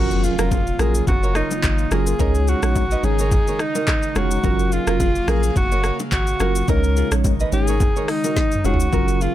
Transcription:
Already playing: sub bass F#1, analog synth pad C#3 F#3 A#3 F4, tine electric piano F#3 C#4 F4 A#4, alto saxophone F#4, impact
0.11 shaker
0.23 alto saxophone F4, nylon-string guitar F4 G#4, shaker
0.38 sub bass F1, tine electric piano F#3 C#4 F4 A#4, nylon-string guitar F#4 A#4, cross-stick, shaker
0.51 nylon-string guitar F4 G#4, kick, high bongo, low conga, shaker
0.67 shaker
0.79 sub bass A#1, tine electric piano F#3 C#4 F4 A#4, nylon-string guitar F#4 A#4, alto saxophone G#4, cross-stick, low bongo, shaker
0.95 shaker
1.07 sub bass F#1, alto saxophone F#4, kick, low conga, shaker
1.23 nylon-string guitar A#4 C#5, shaker
1.35 alto saxophone D#4, nylon-string guitar A#4 C#5, cross-stick, shaker
1.51 low bongo, shaker
1.63 sub bass G#1, kick, clap, high bongo, shaker
1.78 shaker
1.91 sub bass F#1, tine electric piano F#3 C#4 F4 A#4, nylon-string guitar F#4 A#4, alto saxophone G#4, cross-stick, low bongo, shaker
2.07 shaker
2.19 sub bass C#2, analog synth pad D#3 G#3 D#4, tine electric piano G#3 C#4 D#4 C#5, nylon-string guitar D#4 A#4, kick, low conga, shaker
2.35 shaker
2.48 nylon-string guitar F4 G#4, alto saxophone F#4, shaker
2.63 sub bass A#1, tine electric piano G#3 C#4 D#4 C#5, cross-stick, shaker
2.75 kick, high bongo, low conga, shaker
2.91 nylon-string guitar B4 D#5, shaker
3.03 sub bass G#1, tine electric piano G#3 C#4 D#4 C#5, alto saxophone G#4, low bongo, shaker
3.19 nylon-string guitar A#4 C#5, shaker
3.32 kick, low conga, shaker
3.47 nylon-string guitar A#4 C#5, shaker
3.59 alto saxophone D#4, cross-stick, shaker
3.75 nylon-string guitar F#4 A#4, low bongo, shaker
3.88 kick, cross-stick, clap, high bongo, shaker
4.03 shaker
4.15 sub bass F1, tine electric piano G#3 C#4 D#4 C#5, nylon-string guitar F4 G#4, alto saxophone F#4, cross-stick, low bongo, shaker
4.31 shaker
4.43 sub bass F#1, analog synth pad C#3 F#3 A#3 F5, tine electric piano F#3 C#4 F4 A#4, nylon-string guitar F#4 A#4, kick, low conga, shaker
4.59 shaker
4.72 alto saxophone F4, nylon-string guitar F4 G#4, shaker
4.87 sub bass F1, tine electric piano F#3 C#4 F4 A#4, nylon-string guitar F#4 A#4, cross-stick, shaker
5.00 nylon-string guitar F4 G#4, kick, high bongo, low conga, shaker
5.15 shaker
5.27 sub bass A#1, tine electric piano F#3 C#4 F4 A#4, nylon-string guitar F#4 A#4, alto saxophone G#4, cross-stick, low bongo, shaker
5.43 shaker
5.56 sub bass F#1, alto saxophone F#4, kick, low conga, shaker
5.72 nylon-string guitar A#4 C#5, shaker
5.84 nylon-string guitar A#4 C#5, cross-stick, shaker
6.00 low bongo, shaker
6.12 sub bass G#1, alto saxophone F#4, kick, clap, high bongo, shaker
6.27 shaker
6.40 sub bass F#1, tine electric piano F#3 C#4 F4 A#4, nylon-string guitar F#4 A#4, cross-stick, low bongo, shaker
6.55 shaker
6.68 sub bass C#2, analog synth pad D#3 G#3 D#4, tine electric piano G#3 C#4 D#4 C#5, nylon-string guitar D#4 A#4, alto saxophone A#4, kick, low conga, shaker
6.84 shaker
6.97 nylon-string guitar F4 G#4, shaker
7.11 sub bass A#1, tine electric piano G#3 C#4 D#4 C#5, cross-stick, shaker
7.24 kick, high bongo, low conga, shaker
7.40 nylon-string guitar B4 D#5, shaker
7.52 sub bass G#1, tine electric piano G#3 C#4 D#4 C#5, alto saxophone G#4, low bongo, shaker
7.68 nylon-string guitar A#4 C#5, shaker
7.80 kick, low conga, shaker
7.96 nylon-string guitar A#4 C#5, shaker
8.08 alto saxophone D#4, cross-stick, open hi-hat, shaker
8.24 nylon-string guitar F#4 A#4, low bongo, shaker
8.36 kick, snare, high bongo, shaker
8.52 mid tom, shaker
8.64 sub bass F1, tine electric piano G#3 C#4 D#4 C#5, nylon-string guitar F4 G#4, alto saxophone F#4, low bongo, shaker
8.74 floor tom
8.80 shaker
8.92 sub bass F#1, analog synth pad C#3 F#3 A#3 F4, tine electric piano F#3 C#4 F4 A#4, nylon-string guitar F#4 A#4, kick, low conga, shaker
9.08 shaker
9.21 alto saxophone F4, nylon-string guitar F4 G#4, shaker

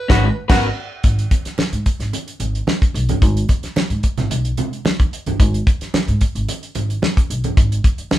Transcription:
Already playing: alto saxophone B4
0.08 upright bass G#1, reed electric piano G#2 D#3, clean electric guitar C#4 F#4 B4, tenor saxophone F#4, kick, snare
0.48 upright bass G#1, reed electric piano B3 C#4 F#4 A#4, clean electric guitar C#4 F#4 B4, tenor saxophone F#4, kick, snare, crash
1.04 upright bass G#1, kick, closed hi-hat
1.19 closed hi-hat
1.31 kick, closed hi-hat, muted conga
1.45 muted upright bass stroke, snare, closed hi-hat
1.58 muted upright bass stroke, snare, high conga
1.72 upright bass G#2, closed hi-hat
1.86 kick, closed hi-hat
1.99 upright bass G#1, snare, closed hi-hat
2.13 closed hi-hat, muted conga
2.28 closed hi-hat
2.40 upright bass G#1, closed hi-hat, muted conga
2.55 closed hi-hat
2.67 snare, high conga
2.82 kick, closed hi-hat
2.94 upright bass B1, closed hi-hat
3.09 upright bass G1, closed hi-hat, high conga
3.22 upright bass G#1, kick, closed hi-hat
3.37 closed hi-hat
3.49 kick, closed hi-hat, muted conga
3.63 muted upright bass stroke, snare, closed hi-hat
3.76 muted upright bass stroke, snare, high conga
3.90 upright bass G#2, closed hi-hat
4.03 kick, closed hi-hat
4.18 upright bass G#1, snare, closed hi-hat, low conga
4.30 upright bass B1, closed hi-hat, muted conga
4.45 closed hi-hat
4.57 closed hi-hat, muted conga, low conga
4.73 closed hi-hat
4.85 muted upright bass stroke, snare, high conga
5.00 upright bass D#2, kick, closed hi-hat
5.13 closed hi-hat
5.26 upright bass G1, closed hi-hat, high conga
5.40 upright bass G#1, kick, closed hi-hat
5.54 closed hi-hat
5.67 kick, closed hi-hat
5.81 muted upright bass stroke, snare, closed hi-hat
5.94 muted upright bass stroke, snare, high conga
6.08 upright bass G#2, closed hi-hat
6.21 kick, closed hi-hat
6.35 upright bass G#1, closed hi-hat
6.49 closed hi-hat, muted conga
6.63 closed hi-hat
6.75 upright bass G#1, closed hi-hat, muted conga
6.90 closed hi-hat
7.02 snare, high conga
7.17 kick, closed hi-hat
7.30 upright bass B1, closed hi-hat
7.44 upright bass G1, closed hi-hat, high conga
7.57 upright bass G#1, kick, closed hi-hat
7.72 closed hi-hat
7.84 kick, closed hi-hat
7.98 muted upright bass stroke, closed hi-hat
8.11 muted upright bass stroke, snare, high conga

